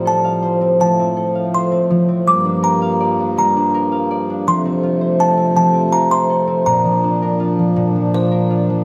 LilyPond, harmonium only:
\new Staff \with { instrumentName = "Harmonium" } { \clef bass \time 3/4 \key f \mixolydian \tempo 4 = 82 << { <f g>4 a2 | bes2. | <c a>2. | <f d'>2. | } \\ { a,2. | g,2. | f,2. | bes,2. | } >> }